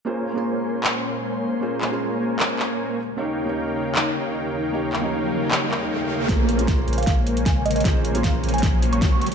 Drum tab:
HH |--------------------------------|--------------------------------|--------------------------------|--------------------------------|
CP |----------------x---------------|----x-----------x---x-----------|----------------x---------------|----x-----------x---x-----------|
SD |--------------------------------|--------------------------------|--------------------------------|--------------------------------|
BD |--------------------------------|--------------------------------|--------------------------------|--------------------------------|

HH |x---x-x-x---xxxxx---x-x-x---xxxx|x---x-x-x---xxxxx---x-x-x---xxx-|
CP |--------------------------------|--------------------------------|
SD |o-------o-------o-------o-------|o-------o-------o-------o-------|
BD |o-------o-------o-------o-------|o-------o-------o-------o-------|